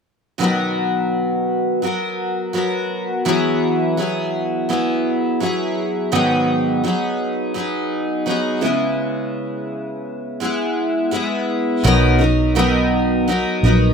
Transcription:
0.38 steel-string acoustic guitar B2 D#3 F#3 B3 F#4 A#4
1.82 steel-string acoustic guitar F#3 B3 F#4 A#4
2.53 steel-string acoustic guitar F#3 B3 F#4 A#4
3.25 steel-string acoustic guitar E3 F#3 B3 E4 G#4
3.97 steel-string acoustic guitar F#3 B3 E4 G#4
4.69 steel-string acoustic guitar F#3 B3 E4 G#4
5.40 steel-string acoustic guitar F#3 B3 E4 G#4
6.12 steel-string acoustic guitar G#2 D#3 F#3 B3 D#4 G#4
6.84 steel-string acoustic guitar F#3 B3 D#4 G#4
7.54 steel-string acoustic guitar F#3 B3 D#4 G#4
8.26 steel-string acoustic guitar F#3 B3 D#4 G#4
8.61 steel-string acoustic guitar C#3 G#3 B3 E4 G#4
10.40 steel-string acoustic guitar G#3 B3 E4 G#4
11.11 steel-string acoustic guitar G#3 B3 E4 G#4
11.84 fingered electric bass B1, steel-string acoustic guitar B2 D#3 F#3 B3 D#4 A#4
12.19 steel-string acoustic guitar F#3 B3 D#4 A#4
12.55 steel-string acoustic guitar B2 D#3 F#3 B3 D#4 A#4
13.28 steel-string acoustic guitar F#3 B3 D#4 A#4
13.63 fingered electric bass A#1, steel-string acoustic guitar F#3 B3 D#4 A#4

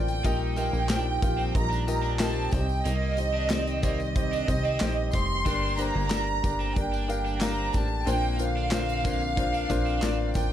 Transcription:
Already playing: analog synth bass A1, analog synth pad D3 A#3 C4, grand piano F4 A#4 C5 D5 F5, violin section G5
0.08 closed hi-hat, tambourine
0.24 analog synth bass A#1, grand piano A#2 F4 G4 A#4 D#5, analog synth pad F3 G3 D#4, overdriven electric guitar D#4, kick, closed hi-hat, tambourine
0.56 overdriven electric guitar A#3, grand piano F4 G4 A#4 D#5, violin section G5, closed hi-hat, tambourine
0.73 analog synth bass A#1, tambourine
0.89 overdriven electric guitar D4, grand piano F4 G4 A#4 C5, snare, clap, closed hi-hat, tambourine
1.22 analog synth bass A#1, grand piano F4 G4 A#4 F5, kick, closed hi-hat, tambourine
1.38 overdriven electric guitar C4, tambourine
1.54 analog synth bass A#1, grand piano F4 G4 A#4 D#5, violin section A#5, kick, closed hi-hat
1.71 overdriven electric guitar D4, tambourine
1.87 grand piano F4 G4 A#4 D#5, violin section A#5, closed hi-hat, tambourine
2.03 overdriven electric guitar D4, tambourine
2.19 overdriven electric guitar C4, grand piano F4 G4 A#4 D#5, violin section A5, snare, clap, closed hi-hat, tambourine
2.51 analog synth bass C2, grand piano C3 D#4 G4 C5 D5, analog synth pad D#3 C4, violin section G5, kick, snare, closed hi-hat, tambourine
2.60 grand piano D#5
2.69 tambourine
2.85 analog synth bass C2, overdriven electric guitar A#3, violin section D#5, closed hi-hat, tambourine
3.17 grand piano D#4 G4 C5 D#5, closed hi-hat, tambourine
3.34 overdriven electric guitar D4
3.50 overdriven electric guitar C4, grand piano D#4 G4 C5 D5, snare, clap, closed hi-hat, tambourine
3.67 closed hi-hat
3.82 overdriven electric guitar A#3, grand piano D#4 G4 C5 D5, violin section D#5, kick, closed hi-hat, tambourine
4.00 tambourine
4.15 grand piano D#4 G4 C5 D#5, kick, closed hi-hat
4.32 overdriven electric guitar D4, tambourine
4.47 analog synth bass C2, grand piano D#4 G4 C5 D#5, kick, closed hi-hat, tambourine
4.65 overdriven electric guitar C4, tambourine
4.80 analog synth bass A#1, grand piano D#4 G4 C5 D#5, snare, clap, closed hi-hat, tambourine
5.11 analog synth bass F1, grand piano D#4 G4 C5 D#5, violin section C6, kick, snare, closed hi-hat, tambourine
5.46 analog synth bass G1, grand piano G2 D4 G4 A#4 D5, analog synth pad D3 A#3, overdriven electric guitar D4, kick, closed hi-hat, tambourine
5.78 overdriven electric guitar A#3, grand piano D4 G4 A#4 C5, violin section A#5, closed hi-hat, tambourine
5.96 analog synth bass G1
6.10 grand piano D4 G4 A#4 D5, overdriven electric guitar D4, snare, clap, closed hi-hat, tambourine
6.43 analog synth bass G1, grand piano D4 G4 A#4 D5, kick, closed hi-hat, tambourine
6.60 overdriven electric guitar C4, tambourine
6.76 analog synth bass G1, grand piano D4 G4 A#4 D5, violin section G5, kick, closed hi-hat
6.93 overdriven electric guitar D4, tambourine
7.08 grand piano D4 G4 A#4 F5, closed hi-hat, tambourine
7.26 overdriven electric guitar D4, tambourine
7.41 overdriven electric guitar C4, grand piano D4 G4 A#4 F5, violin section A#5, snare, clap, closed hi-hat, tambourine
7.73 analog synth bass A1, grand piano D4 G4 A#4 D5, violin section A5, kick, closed hi-hat, tambourine
8.06 analog synth bass A#1, grand piano A#2 D4 F4 A#4 C5, overdriven electric guitar A#3, analog synth pad A#3 C4, violin section G5, closed hi-hat, tambourine
8.39 grand piano D4 F4 A#4 C5, violin section F5, closed hi-hat, tambourine
8.57 overdriven electric guitar D4
8.71 overdriven electric guitar C4, grand piano D4 F4 A#4 C5, snare, clap, closed hi-hat, tambourine
8.89 closed hi-hat
9.04 overdriven electric guitar A#3, grand piano D4 F4 A#4 C5, kick, closed hi-hat, tambourine
9.21 tambourine
9.37 grand piano D4 F4 A#4 C5, kick, closed hi-hat
9.54 overdriven electric guitar D4, tambourine
9.70 analog synth bass A#1, grand piano D4 F4 A#4 C5, kick, closed hi-hat, tambourine
9.86 overdriven electric guitar C4, tambourine
10.02 analog synth bass A1, grand piano D4 F4 A#4 D5, snare, clap, closed hi-hat, tambourine
10.34 analog synth bass A1, grand piano D4 F4 A#4 D5, violin section G5, kick, snare, closed hi-hat, tambourine

